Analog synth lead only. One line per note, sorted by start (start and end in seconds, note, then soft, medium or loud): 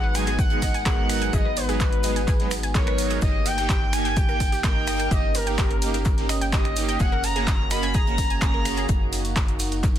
0.00 0.17 F#5 loud
0.15 0.38 G#5 loud
0.39 0.83 F#5 loud
0.86 1.35 F#5 loud
1.33 1.58 D#5 loud
1.57 2.51 B4 medium
2.75 3.19 C#5 loud
3.22 3.47 D#5 loud
3.46 3.95 G5 loud
3.93 4.18 G#5 loud
4.17 4.63 G5 loud
4.64 5.13 G5 loud
5.11 5.36 D#5 loud
5.35 6.29 A#4 medium
6.53 7.02 D#5 medium
7.00 7.23 F#5 loud
7.24 7.68 A#5 loud
7.71 7.96 B5 loud
7.95 8.41 A#5 loud
8.42 8.86 A#5 loud